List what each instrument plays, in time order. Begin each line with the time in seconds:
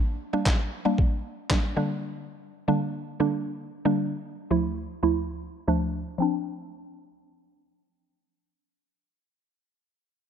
Already playing: synth pluck G3 A#3 D4
0.33 synth pluck G3 A#3 D4
0.46 kick, snare, clap
0.85 synth pluck G3 A#3 D4
0.98 kick
1.50 synth pluck G3 A#3 D4, kick, snare, clap
1.76 synth pluck D3 G3 A#3 D4
2.68 synth pluck D3 G3 A#3 D4
3.20 synth pluck D3 G3 A#3 D4
3.85 synth pluck D3 G3 A#3 D4
4.50 synth pluck D2 F3 A3 E4
5.03 synth pluck D2 F3 A3 E4
5.68 synth pluck D2 F3 A3 D4
6.18 synth pluck F3 C4 D4